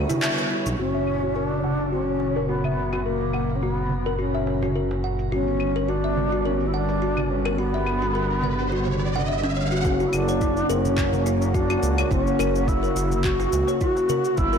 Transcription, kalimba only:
0.09 0.22 E4 loud
0.23 0.31 E5 medium
0.51 0.65 E4 medium
0.79 0.94 F#4 medium
0.94 1.21 E5 medium
1.23 1.35 F#4 medium
1.36 1.63 A#4 medium
1.64 1.91 F#5 medium
1.92 2.07 F#4 medium
2.36 2.48 A#4 medium
2.49 2.64 F#4 medium
2.65 2.91 E5 medium
2.93 3.05 F#4 medium
3.06 3.33 A#4 medium
3.34 3.61 F#5 medium
3.63 3.77 F#4 medium
4.06 4.18 A#4 medium
4.19 4.33 F#4 medium
4.35 4.61 E5 medium
4.63 4.75 F#4 medium
4.76 5.02 A#4 medium
5.04 5.31 F#5 medium
5.32 5.47 F#4 medium
5.76 5.88 A#4 medium
5.89 6.03 F#4 medium
6.04 6.31 E5 medium
6.32 6.44 F#4 medium
6.45 6.72 A#4 medium
6.74 7.01 F#5 medium
7.02 7.16 F#4 medium
7.46 7.58 A#4 loud
7.58 7.73 F#4 medium
7.74 8.01 E5 medium
8.02 8.14 F#4 medium
8.15 8.42 A#4 medium
8.44 8.70 F#5 medium
8.72 8.87 F#4 medium
9.16 9.23 F#5 medium
9.28 9.42 E5 medium
9.44 9.56 C#4 loud
9.57 9.71 C#5 medium
9.72 9.83 F#4 medium
9.84 9.98 F#4 medium
10.00 10.27 F#4 loud
10.29 10.40 C#5 medium
10.42 10.68 E4 medium
10.70 11.12 A#4 loud
11.13 11.21 A#4 medium
11.26 11.53 F#4 medium
11.54 11.68 F#4 loud
11.70 11.97 F#4 loud
11.98 12.10 C#5 medium
12.11 12.38 E4 medium
12.39 12.82 A#4 loud
12.83 12.90 A#4 medium
12.96 13.23 F#4 medium
13.24 13.38 F#4 loud
13.40 13.66 F#4 loud
13.68 13.80 C#5 medium
13.81 14.08 E4 medium
14.10 14.38 A#4 loud
14.53 14.58 A#4 medium

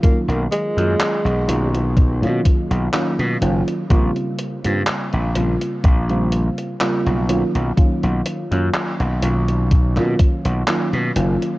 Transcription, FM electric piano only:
0.02 0.71 D#3 medium
0.02 0.71 F#3 medium
0.02 0.71 A#3 medium
0.02 0.71 C#4 medium
0.02 0.72 F4 loud
0.77 1.43 D#3 medium
0.77 1.43 F#3 medium
0.77 1.43 A#3 medium
0.77 1.43 C#4 medium
0.77 1.44 F4 medium
1.48 2.16 D#3 medium
1.48 2.16 F#3 medium
1.48 2.17 A#3 medium
1.48 2.17 C#4 medium
1.48 2.17 F4 medium
2.22 2.88 D#3 medium
2.22 2.88 F#3 medium
2.22 2.88 A#3 medium
2.22 2.88 C#4 medium
2.22 2.89 F4 loud
2.93 3.36 D#3 medium
2.93 3.36 F#3 medium
2.93 3.37 A#3 medium
2.93 3.37 C#4 medium
2.93 3.37 F4 loud
3.41 3.84 D#3 medium
3.41 3.85 F#3 medium
3.41 3.85 A#3 medium
3.41 3.85 C#4 medium
3.41 3.85 F4 loud
3.89 4.58 C#3 loud
3.89 4.58 G3 medium
3.89 4.58 A#3 medium
3.89 4.58 C4 medium
3.89 4.59 F4 loud
4.64 5.30 C#3 medium
4.64 5.30 G3 medium
4.64 5.30 A#3 medium
4.64 5.30 C4 medium
4.64 5.31 F4 medium
5.35 6.03 C#3 medium
5.35 6.04 G3 medium
5.35 6.04 A#3 medium
5.35 6.04 C4 medium
5.35 6.04 F4 medium
6.09 6.75 C#3 medium
6.09 6.75 G3 medium
6.09 6.75 A#3 medium
6.09 6.76 C4 medium
6.09 6.76 F4 loud
6.80 7.23 C#3 medium
6.80 7.23 G3 medium
6.80 7.24 A#3 medium
6.80 7.24 C4 medium
6.80 7.24 F4 loud
7.28 7.72 D#3 medium
7.28 7.72 F#3 medium
7.28 7.72 A#3 medium
7.28 7.72 C#4 medium
7.28 7.72 F4 loud
7.77 8.45 D#3 medium
7.77 8.45 F#3 medium
7.77 8.45 A#3 medium
7.77 8.46 C#4 medium
7.77 8.46 F4 loud
8.51 9.17 D#3 medium
8.51 9.17 F#3 medium
8.51 9.17 A#3 medium
8.51 9.17 C#4 medium
8.51 9.17 F4 medium
9.22 9.90 D#3 medium
9.22 9.90 F#3 medium
9.22 9.91 A#3 medium
9.22 9.91 C#4 medium
9.22 9.91 F4 medium
9.96 10.62 D#3 medium
9.96 10.62 F#3 medium
9.96 10.62 A#3 medium
9.96 10.62 C#4 medium
9.96 10.63 F4 loud
10.67 11.10 D#3 medium
10.67 11.11 F#3 medium
10.67 11.11 A#3 medium
10.67 11.11 C#4 medium
10.67 11.11 F4 loud
11.16 11.58 D#3 medium
11.16 11.58 F#3 medium
11.16 11.58 A#3 medium
11.16 11.58 C#4 medium
11.16 11.58 F4 loud

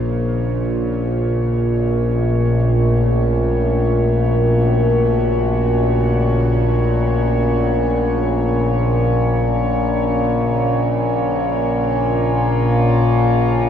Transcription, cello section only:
0.00 13.69 C#3 medium
0.00 1.05 A#3 medium
0.00 1.05 F4 medium
0.00 13.69 C#5 medium
2.08 8.94 A3 medium
4.06 8.95 F#4 medium
10.15 13.69 A#3 medium
11.96 13.69 F4 medium

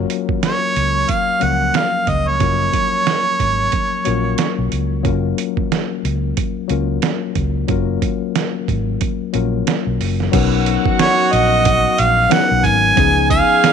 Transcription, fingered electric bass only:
0.77 1.03 C#2 medium
1.42 1.69 C#2 medium
2.08 2.43 C#2 medium
2.41 2.68 F#1 medium
3.40 3.67 G#1 medium
4.07 4.34 A#1 medium
4.59 4.70 B1 medium
4.72 5.07 C#2 medium
5.05 5.32 F#1 medium
6.05 6.32 C#2 medium
6.70 6.97 C#2 medium
7.36 7.63 C#2 medium
7.69 7.96 F#1 medium
8.69 8.96 G#1 medium
9.35 9.61 A#1 medium
9.87 9.98 B1 medium
10.01 10.28 F#1 medium
10.34 10.76 B1 medium
11.33 11.87 A#1 medium
11.99 12.26 A#1 loud
12.51 12.62 B1 medium
12.65 12.91 G#1 medium
12.98 13.40 C#2 loud

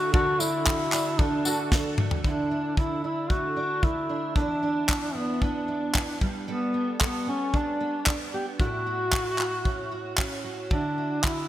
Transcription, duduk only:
0.00 0.13 F#4 loud
0.13 0.41 F#4 loud
0.40 1.22 E4 loud
1.20 1.72 D4 medium
2.25 2.74 D4 medium
2.78 3.02 E4 medium
3.04 3.32 E4 medium
3.30 3.85 F#4 medium
3.84 4.35 E4 medium
4.36 5.17 D4 medium
5.16 5.44 B3 medium
5.42 6.21 D4 medium
6.48 6.97 B3 medium
7.02 7.26 B3 medium
7.29 7.57 C#4 medium
7.56 8.08 D4 medium
8.34 8.46 G4 medium
8.60 10.14 F#4 loud
10.72 11.26 D4 loud
11.25 11.48 E4 medium

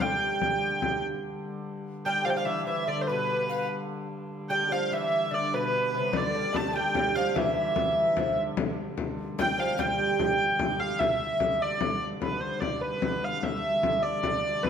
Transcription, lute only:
0.01 0.99 G3 medium
2.06 2.25 G3 medium
2.26 2.35 F3 medium
2.36 2.46 F3 medium
2.45 2.66 E3 medium
2.67 2.87 E3 medium
2.87 3.08 D3 medium
3.10 3.66 B2 medium
4.50 4.71 G3 medium
4.71 4.92 F3 medium
4.92 5.31 E3 medium
5.31 5.53 D3 medium
5.53 5.95 B2 medium
5.95 6.14 C3 medium
6.14 6.33 D3 medium
6.35 6.55 G3 medium
6.56 6.76 A3 medium
6.75 6.96 G3 medium
6.97 7.15 G3 medium
7.16 7.36 F3 medium
7.36 8.19 E3 medium
8.18 8.36 F3 medium
9.39 9.58 G3 medium
9.59 9.78 F3 medium
9.79 10.76 G3 medium

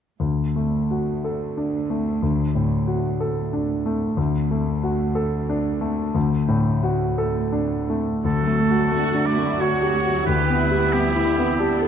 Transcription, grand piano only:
0.20 2.17 D2 soft
0.56 1.11 A3 soft
0.91 1.44 F#4 soft
1.24 1.76 A4 soft
1.57 2.09 D4 soft
1.90 2.42 A3 soft
2.22 4.13 D2 soft
2.55 3.07 A2 soft
2.87 3.39 F#4 soft
3.20 3.72 A4 soft
3.53 4.04 D4 soft
3.86 4.18 A3 soft
4.17 6.11 D2 soft
4.51 5.03 A3 soft
4.83 5.35 F#4 soft
5.15 5.68 A4 soft
5.49 6.02 D4 soft
5.81 6.35 A3 soft
6.14 8.21 D2 soft
6.48 7.03 A2 soft
6.83 7.39 F#4 soft
7.18 7.75 A4 soft
7.52 8.11 D4 soft
7.90 8.25 A3 soft
8.24 10.23 D2 soft
8.47 8.84 A3 soft
8.70 9.07 F#4 soft
8.92 9.29 A3 soft
9.14 9.51 D4 soft
9.38 9.74 A3 soft
9.60 9.96 F#4 soft
9.82 10.05 G4 soft
10.05 10.27 F#4 soft
10.27 11.88 D2 soft
10.50 10.85 B3 soft
10.71 11.06 G4 soft
10.94 11.29 B3 soft
11.16 11.51 E4 soft
11.39 11.74 B3 soft
11.60 11.88 G4 soft
11.81 11.88 A4 soft

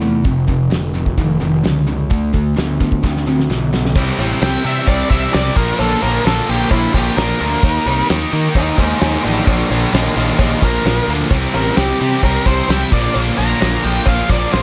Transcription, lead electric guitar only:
4.42 4.64 G5 loud
4.66 4.87 E5 medium
4.88 5.10 D5 medium
5.10 5.32 E5 medium
5.33 5.56 D5 loud
5.56 5.78 A#4 medium
5.80 6.02 A4 medium
6.03 6.25 A#4 medium
6.26 6.48 A4 medium
6.49 6.71 G4 loud
6.71 6.94 E4 medium
6.95 7.17 G4 medium
7.17 8.06 A#4 loud
8.56 8.77 D#4 loud
8.56 8.78 C5 loud
8.78 9.00 D#4 medium
8.78 9.01 C5 medium
9.01 9.22 D#4 medium
9.01 9.24 C5 medium
9.24 9.45 D4 medium
9.24 9.46 A#4 medium
9.46 9.68 D4 medium
9.46 9.69 A#4 medium
9.70 9.91 D4 medium
9.70 9.93 A#4 medium
9.94 10.15 A#3 medium
9.94 10.16 G4 medium
10.16 10.38 A#3 medium
10.16 10.39 G4 medium
10.40 10.61 A#3 medium
10.40 10.62 G4 loud
10.64 11.08 A#4 loud
11.55 11.77 A#4 medium
11.78 12.22 G4 medium
12.25 12.46 A#4 loud
12.46 12.68 C5 medium
12.71 12.92 G5 medium
12.93 13.15 D5 loud
13.38 13.82 A#5 loud
13.84 14.06 G5 loud
14.09 14.30 F5 loud
14.30 14.52 D5 medium
14.53 14.63 C5 medium

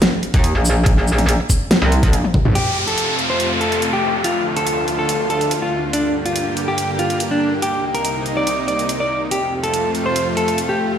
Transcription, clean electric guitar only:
2.55 2.77 G4 medium
2.87 3.16 A4 medium
3.30 3.51 C5 medium
3.61 3.82 A4 medium
3.93 4.15 G4 medium
4.24 4.46 F4 medium
4.57 4.85 A4 medium
4.99 5.20 A4 medium
5.30 5.51 A4 medium
5.62 5.84 F4 medium
5.93 6.15 D4 medium
6.26 6.54 F4 medium
6.68 6.89 G4 medium
6.99 7.20 F4 medium
7.31 7.53 D4 medium
7.62 7.84 G4 medium
7.95 8.23 A#4 medium
8.37 8.58 D5 medium
8.68 8.89 D5 medium
9.00 9.22 D5 medium
9.31 9.53 G4 medium
9.63 9.92 A4 medium
10.06 10.27 C5 medium
10.37 10.58 A4 medium
10.69 10.91 G4 medium

